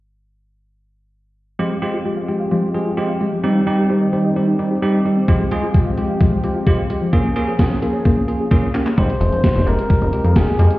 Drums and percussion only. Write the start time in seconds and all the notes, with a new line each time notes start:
5.28 kick, closed hi-hat
5.51 closed hi-hat
5.74 kick, closed hi-hat
5.98 closed hi-hat
6.21 kick, closed hi-hat
6.44 closed hi-hat
6.67 kick, closed hi-hat
6.90 closed hi-hat
7.13 kick, closed hi-hat
7.36 closed hi-hat
7.59 kick, snare, closed hi-hat
7.82 closed hi-hat
8.05 kick, closed hi-hat
8.28 closed hi-hat
8.51 kick, clap, closed hi-hat
8.75 clap, closed hi-hat
8.86 clap
8.98 kick, closed hi-hat
9.10 closed hi-hat
9.21 closed hi-hat
9.32 closed hi-hat
9.44 kick, snare, closed hi-hat
9.56 closed hi-hat
9.67 closed hi-hat
9.79 closed hi-hat
9.90 kick, closed hi-hat
10.02 closed hi-hat
10.13 closed hi-hat
10.24 closed hi-hat
10.36 kick, snare, closed hi-hat
10.48 closed hi-hat
10.59 closed hi-hat
10.70 closed hi-hat